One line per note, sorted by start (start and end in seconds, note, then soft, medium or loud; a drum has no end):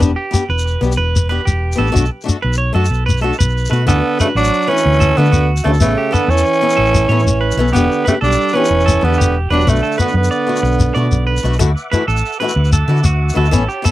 0.00 0.13 E1 medium
0.00 0.10 D4 medium
0.00 0.10 G4 medium
0.00 shekere medium
0.16 0.47 G4 medium
0.31 0.42 B3 medium
0.31 0.42 D4 medium
0.31 0.43 G4 medium
0.31 shekere medium
0.49 0.76 E1 medium
0.49 0.80 B4 medium
0.59 shekere medium
0.67 shekere soft
0.81 0.95 B1 medium
0.81 0.91 B3 medium
0.81 0.92 D4 medium
0.81 0.93 G4 medium
0.81 shekere soft
0.92 shekere medium
0.97 1.37 E1 medium
0.97 1.28 B4 medium
1.16 shekere medium
1.29 1.40 B3 medium
1.29 1.40 D4 medium
1.29 1.41 G4 medium
1.29 1.45 B4 medium
1.45 1.73 E1 medium
1.45 1.77 G4 medium
1.45 shekere medium
1.72 1.87 B3 medium
1.72 shekere medium
1.77 1.92 A1 medium
1.77 1.88 D4 medium
1.77 1.89 G4 medium
1.77 2.09 A4 medium
1.87 shekere soft
1.92 2.08 B1 medium
1.92 2.03 A3 medium
1.92 2.03 D4 medium
1.92 2.04 F#4 medium
1.96 shekere medium
2.05 shekere soft
2.21 2.35 A3 medium
2.21 shekere soft
2.25 2.36 D4 medium
2.25 2.36 F#4 medium
2.25 shekere medium
2.42 2.70 B1 medium
2.42 2.57 B4 medium
2.53 shekere medium
2.58 2.74 C#5 medium
2.73 2.88 F#2 medium
2.73 2.84 A3 medium
2.73 2.84 D4 medium
2.73 2.85 F#4 medium
2.73 3.06 A4 medium
2.85 shekere medium
2.90 3.30 B1 medium
2.90 shekere soft
3.06 3.22 B4 medium
3.06 shekere medium
3.17 3.32 A3 medium
3.17 shekere soft
3.22 3.33 D4 medium
3.22 3.34 F#4 medium
3.22 3.38 A4 medium
3.33 shekere soft
3.39 3.67 B1 medium
3.39 3.70 B4 medium
3.39 shekere medium
3.50 shekere soft
3.58 shekere soft
3.65 shekere medium
3.70 3.85 B2 medium
3.70 3.81 A3 medium
3.70 3.82 F#4 medium
3.70 3.87 B4 medium
3.70 shekere soft
3.86 4.00 D2 medium
3.86 4.17 D3 medium
3.86 3.97 E3 medium
3.86 4.18 B3 medium
3.86 3.98 D4 medium
3.86 3.98 F#4 medium
3.86 4.19 A4 medium
3.86 muted steel-string acoustic guitar stroke medium
3.86 shekere medium
4.19 4.28 C#3 medium
4.19 4.29 E3 medium
4.19 4.30 A3 medium
4.19 4.28 A3 medium
4.19 4.31 D4 medium
4.19 4.31 F#4 medium
4.19 4.36 B4 medium
4.19 shekere medium
4.35 4.49 A1 medium
4.35 4.72 F#3 medium
4.35 4.70 D4 loud
4.35 4.67 F#4 medium
4.35 shekere soft
4.44 shekere medium
4.53 shekere soft
4.62 shekere soft
4.67 4.78 E3 medium
4.67 5.19 E3 medium
4.67 4.78 A3 medium
4.67 5.19 C#4 loud
4.67 4.79 D4 medium
4.67 4.80 F#4 medium
4.67 4.99 B4 medium
4.77 shekere medium
4.86 5.12 D2 medium
4.93 shekere soft
5.00 5.31 A4 medium
5.00 shekere medium
5.17 5.49 D3 medium
5.17 5.31 D3 medium
5.17 5.27 E3 medium
5.17 5.27 A3 medium
5.17 5.49 B3 medium
5.17 5.27 D4 medium
5.17 5.28 F#4 medium
5.25 shekere soft
5.32 5.60 D2 medium
5.32 5.63 F#4 medium
5.32 shekere medium
5.57 shekere medium
5.64 5.79 D2 medium
5.64 5.73 C#3 medium
5.64 5.74 E3 medium
5.64 5.72 A3 medium
5.64 5.75 A3 medium
5.64 5.75 D4 medium
5.64 5.76 F#4 medium
5.64 5.96 A4 medium
5.74 shekere soft
5.80 5.94 A1 medium
5.80 6.16 C#3 medium
5.80 5.91 E3 medium
5.80 6.14 A3 medium
5.80 5.91 B3 medium
5.80 5.91 C#4 medium
5.80 5.92 A4 medium
5.80 shekere medium
5.98 6.13 G4 medium
6.11 6.32 D3 medium
6.11 6.22 E3 medium
6.11 6.23 B3 medium
6.11 6.31 B3 medium
6.11 6.44 A4 medium
6.11 6.23 A4 medium
6.11 muted steel-string acoustic guitar stroke medium
6.11 shekere medium
6.28 6.42 E2 medium
6.28 7.59 E3 medium
6.28 7.58 C#4 loud
6.28 shekere soft
6.37 shekere medium
6.45 muted clean electric guitar stroke medium
6.53 shekere soft
6.61 6.71 B3 medium
6.61 6.72 C#4 medium
6.61 6.72 A4 medium
6.61 muted steel-string acoustic guitar stroke medium
6.70 shekere medium
6.77 7.04 A1 loud
6.77 7.08 A4 medium
6.86 shekere soft
6.95 shekere medium
7.09 7.23 A2 medium
7.09 7.19 E3 medium
7.09 7.20 B3 medium
7.09 7.20 C#4 medium
7.09 7.20 A4 medium
7.09 7.40 C#5 medium
7.20 shekere soft
7.24 7.51 A1 medium
7.24 shekere medium
7.41 7.72 B4 medium
7.51 shekere medium
7.57 7.71 B1 medium
7.57 7.68 E3 medium
7.57 7.68 B3 medium
7.57 7.68 C#4 medium
7.57 7.69 A4 medium
7.68 shekere soft
7.73 7.87 E1 medium
7.73 8.05 D3 medium
7.73 8.03 B3 medium
7.73 7.83 B3 medium
7.73 7.84 D4 medium
7.73 8.04 G4 medium
7.73 7.85 G4 medium
7.73 shekere medium
7.92 shekere soft
8.05 8.15 C#3 medium
8.05 8.15 A3 medium
8.05 8.16 B3 medium
8.05 8.17 D4 medium
8.05 8.17 G4 medium
8.05 8.21 B4 medium
8.05 shekere medium
8.21 8.36 B1 medium
8.21 8.57 G3 medium
8.21 8.57 D4 loud
8.21 8.52 A4 medium
8.21 shekere soft
8.32 shekere medium
8.41 shekere soft
8.49 shekere soft
8.54 9.05 E3 medium
8.54 8.64 B3 medium
8.54 9.06 C#4 loud
8.54 8.65 D4 medium
8.54 8.65 G4 medium
8.54 8.85 B4 medium
8.65 shekere medium
8.70 8.97 E1 loud
8.80 shekere soft
8.86 9.17 A4 medium
8.86 shekere medium
9.01 9.16 E2 medium
9.01 9.35 D3 medium
9.01 9.12 B3 medium
9.01 9.36 B3 medium
9.01 9.12 D4 medium
9.01 9.13 G4 medium
9.13 shekere soft
9.18 9.46 E1 medium
9.18 9.49 G4 medium
9.18 shekere medium
9.50 9.64 E1 medium
9.50 9.70 F#3 medium
9.50 9.60 B3 medium
9.50 9.71 D4 medium
9.50 9.61 D4 medium
9.50 9.62 G4 medium
9.50 9.81 B4 medium
9.61 shekere soft
9.67 9.80 B1 loud
9.67 10.00 D3 medium
9.67 9.77 A3 medium
9.67 10.00 A3 medium
9.67 9.77 D4 medium
9.67 9.78 F#4 medium
9.67 shekere medium
9.76 shekere soft
9.83 9.97 A4 medium
9.83 shekere soft
9.92 shekere soft
9.98 10.15 D3 medium
9.98 10.08 A3 medium
9.98 10.15 B3 medium
9.98 10.09 D4 medium
9.98 10.10 F#4 medium
9.98 10.29 B4 medium
9.98 shekere medium
10.08 shekere soft
10.14 10.28 F#2 medium
10.14 11.40 B3 medium
10.20 11.42 D3 medium
10.24 shekere medium
10.31 10.62 D5 medium
10.31 shekere soft
10.47 10.57 A3 medium
10.47 10.57 D4 medium
10.47 10.58 F#4 medium
10.56 shekere medium
10.63 10.90 B1 loud
10.63 muted clean electric guitar stroke medium
10.63 shekere soft
10.72 shekere soft
10.80 shekere medium
10.95 11.09 B2 medium
10.95 11.05 A3 medium
10.95 11.06 D4 medium
10.95 11.06 F#4 medium
10.95 11.26 D5 medium
10.95 shekere soft
11.11 11.38 B1 medium
11.11 shekere medium
11.27 11.58 B4 medium
11.37 shekere medium
11.43 11.57 B1 medium
11.43 11.53 A3 medium
11.43 11.54 D4 medium
11.43 11.54 F#4 medium
11.53 shekere soft
11.59 11.74 D2 medium
11.59 11.69 A3 medium
11.59 11.69 E4 medium
11.59 11.70 F#4 medium
11.59 13.52 E5 medium
11.59 13.51 F#5 medium
11.59 13.51 D6 medium
11.59 muted steel-string acoustic guitar stroke medium
11.59 muted clean electric guitar stroke medium
11.59 shekere medium
11.77 shekere soft
11.92 12.02 E3 medium
11.92 12.02 A3 medium
11.92 12.02 E4 medium
11.92 12.03 F#4 medium
11.92 12.07 B4 medium
11.92 shekere medium
12.08 12.21 A1 medium
12.08 12.38 A4 medium
12.08 shekere soft
12.17 shekere medium
12.26 shekere soft
12.32 shekere soft
12.40 12.50 E3 medium
12.40 12.50 A3 medium
12.40 12.51 E4 medium
12.40 12.71 B4 medium
12.44 12.52 F#4 medium
12.49 shekere medium
12.56 12.83 D2 medium
12.65 shekere soft
12.73 13.03 A4 medium
12.73 shekere medium
12.88 13.01 D3 medium
12.88 12.98 E3 medium
12.88 12.98 E4 medium
12.88 12.99 F#4 medium
12.97 shekere soft
13.04 13.30 D2 medium
13.04 13.35 F#4 medium
13.04 shekere medium
13.29 shekere medium
13.34 13.50 D2 medium
13.34 13.45 E3 medium
13.34 13.45 A3 medium
13.34 13.46 E4 medium
13.34 13.46 F#4 medium
13.34 13.67 A4 medium
13.45 shekere soft
13.51 13.66 A1 medium
13.51 13.62 E3 medium
13.51 13.62 B3 medium
13.51 13.62 C#4 medium
13.51 13.63 A4 loud
13.51 13.91 C#5 medium
13.51 13.91 A5 medium
13.51 13.91 B5 medium
13.51 shekere medium
13.68 13.84 G4 medium
13.68 shekere soft
13.82 13.91 E3 medium
13.82 13.91 B3 medium
13.82 13.91 A4 medium
13.82 muted steel-string acoustic guitar stroke medium
13.82 shekere medium